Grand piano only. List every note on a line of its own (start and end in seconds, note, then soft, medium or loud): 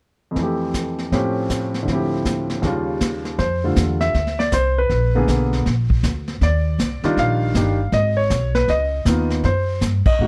0.31 1.10 F2 soft
0.31 1.11 E3 soft
0.39 1.13 A3 soft
0.39 1.12 G4 soft
1.12 1.84 A2 medium
1.12 1.86 F3 soft
1.12 1.88 C4 soft
1.12 1.89 C#4 soft
1.12 1.89 G4 medium
1.83 2.61 D2 soft
1.83 2.62 A2 soft
1.87 2.63 F3 soft
1.87 2.64 C4 soft
1.92 2.66 E4 soft
1.92 2.67 G4 soft
2.62 3.39 D#2 medium
2.62 3.39 C#3 soft
2.62 3.40 G3 medium
2.67 3.41 F4 medium
3.39 3.74 C5 medium
3.64 4.13 D3 soft
3.64 4.13 G3 soft
3.64 4.13 A3 soft
3.64 4.13 F4 soft
4.01 4.40 E5 medium
4.39 4.52 D5 medium
4.53 4.78 C5 medium
4.78 5.49 B4 medium
5.15 5.64 D3 medium
5.15 5.64 A#3 medium
5.15 5.64 B3 medium
5.15 5.65 G#4 medium
6.43 7.20 D5 medium
7.04 7.53 D#3 medium
7.04 7.53 G3 medium
7.04 7.53 D4 medium
7.04 7.53 F4 medium
7.19 7.90 F5 medium
7.56 7.77 D#3 medium
7.56 7.77 G3 soft
7.56 7.77 D4 soft
7.56 7.78 G4 medium
7.94 8.18 D#5 medium
8.17 8.56 C#5 medium
8.55 8.69 B4 medium
8.70 9.27 D#5 medium
9.07 9.45 D#3 medium
9.07 9.45 A#3 soft
9.07 9.45 B3 soft
9.07 9.45 F4 soft
9.45 9.80 C5 medium
10.06 10.27 D#5 medium
10.21 10.27 D#3 soft
10.21 10.27 G#3 soft
10.21 10.27 A#3 soft
10.21 10.27 F#4 medium